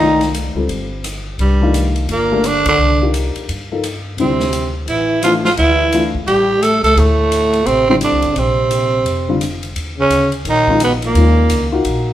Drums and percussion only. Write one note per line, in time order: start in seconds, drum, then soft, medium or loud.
0.21 snare soft
0.21 ride soft
0.34 hi-hat pedal medium
0.34 ride medium
0.69 ride soft
1.04 cross-stick medium
1.04 hi-hat pedal medium
1.04 ride medium
1.39 ride soft
1.74 hi-hat pedal medium
1.74 ride medium
1.96 ride soft
2.09 ride medium
2.44 cross-stick medium
2.44 hi-hat pedal medium
2.44 ride medium
2.66 kick medium
2.66 ride medium
3.14 hi-hat pedal medium
3.14 ride medium
3.36 ride soft
3.49 ride medium
3.84 cross-stick medium
3.84 hi-hat pedal soft
3.84 ride medium
4.18 ride medium
4.40 snare soft
4.53 hi-hat pedal medium
4.53 ride medium
4.88 ride soft
5.23 cross-stick medium
5.23 hi-hat pedal medium
5.23 ride medium
5.45 snare medium
5.57 ride medium
5.92 hi-hat pedal medium
5.92 ride medium
6.15 kick soft
6.27 ride soft
6.63 cross-stick medium
6.63 hi-hat pedal medium
6.63 ride medium
6.84 snare soft
6.84 ride soft
6.97 ride medium
7.32 hi-hat pedal medium
7.32 ride medium
7.53 ride soft
7.66 ride medium
8.01 cross-stick medium
8.01 hi-hat pedal medium
8.01 ride medium
8.22 ride soft
8.36 ride medium
8.71 hi-hat pedal medium
8.71 ride medium
9.06 ride medium
9.41 cross-stick medium
9.41 hi-hat pedal soft
9.41 ride medium
9.63 ride soft
9.76 ride medium
10.10 hi-hat pedal medium
10.10 ride medium
10.32 ride soft
10.45 ride medium
10.67 kick medium
10.80 cross-stick medium
10.80 hi-hat pedal medium
10.80 ride medium
11.02 ride soft
11.15 ride medium
11.50 hi-hat pedal medium
11.50 ride medium
11.85 ride medium